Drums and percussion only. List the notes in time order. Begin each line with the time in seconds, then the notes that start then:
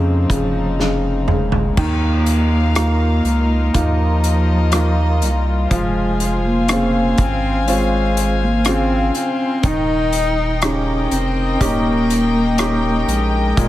0.30 kick, closed hi-hat
0.80 snare
1.28 mid tom
1.52 floor tom
1.77 kick, crash
2.26 closed hi-hat
2.75 cross-stick, closed hi-hat
3.25 closed hi-hat
3.74 kick, closed hi-hat
4.24 closed hi-hat
4.72 cross-stick, closed hi-hat
5.22 closed hi-hat
5.71 kick, closed hi-hat
6.20 closed hi-hat
6.68 cross-stick, closed hi-hat
7.18 kick, closed hi-hat
7.68 closed hi-hat
8.17 closed hi-hat
8.65 cross-stick, closed hi-hat
9.15 closed hi-hat
9.63 kick, closed hi-hat
10.13 closed hi-hat
10.62 cross-stick, closed hi-hat
11.11 closed hi-hat
11.61 kick, closed hi-hat
12.10 closed hi-hat
12.58 cross-stick, closed hi-hat
13.09 closed hi-hat
13.57 kick, closed hi-hat